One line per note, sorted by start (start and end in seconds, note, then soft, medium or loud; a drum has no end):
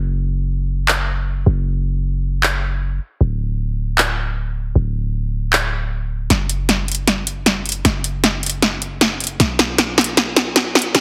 0.00 1.45 F#1 medium
0.88 clap medium
1.46 2.99 F#1 medium
2.43 clap medium
3.21 4.74 D1 medium
3.98 clap medium
4.75 6.28 D1 medium
5.53 clap medium
6.30 7.83 F#1 medium
6.30 snare soft
6.30 closed hi-hat medium
6.50 closed hi-hat medium
6.69 snare soft
6.69 closed hi-hat medium
6.88 closed hi-hat soft
6.92 closed hi-hat medium
6.95 closed hi-hat medium
7.08 snare soft
7.08 closed hi-hat medium
7.27 closed hi-hat medium
7.46 snare medium
7.46 closed hi-hat medium
7.66 closed hi-hat soft
7.69 closed hi-hat medium
7.72 closed hi-hat medium
7.85 9.38 F#1 medium
7.85 snare medium
7.85 closed hi-hat medium
8.04 closed hi-hat medium
8.24 snare medium
8.24 closed hi-hat medium
8.43 closed hi-hat soft
8.46 closed hi-hat medium
8.50 closed hi-hat medium
8.62 snare medium
8.62 closed hi-hat medium
8.82 closed hi-hat medium
9.01 snare medium
9.01 closed hi-hat medium
9.20 closed hi-hat soft
9.24 closed hi-hat medium
9.27 closed hi-hat medium
9.40 10.93 B1 medium
9.40 snare medium
9.40 closed hi-hat medium
9.59 snare medium
9.59 closed hi-hat medium
9.78 snare medium
9.78 closed hi-hat medium
9.98 snare medium
9.98 closed hi-hat soft
10.01 closed hi-hat medium
10.04 closed hi-hat medium
10.17 snare medium
10.17 closed hi-hat medium
10.36 snare medium
10.36 closed hi-hat medium
10.56 snare medium
10.56 closed hi-hat medium
10.75 snare medium
10.75 closed hi-hat soft
10.79 closed hi-hat medium
10.82 closed hi-hat medium
10.95 11.01 B1 medium
10.95 snare medium
10.95 closed hi-hat medium